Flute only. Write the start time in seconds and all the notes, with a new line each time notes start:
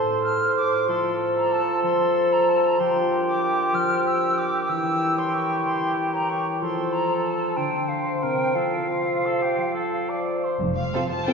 Already playing: C6
0.23 F6
0.56 D6
0.89 C6
1.36 A#5
1.52 A5
1.84 C6
2.33 A#5
2.49 A5
2.65 A#5
2.79 C6
3.27 D6
3.74 F6
4.05 E6
4.38 D6
4.69 E6
5.19 C6
5.34 C#6
5.65 C6
6.14 A#5
6.30 C#6
6.61 C6
6.93 A#5
7.25 A5
7.56 G5
7.89 F5
8.23 G5
8.55 F5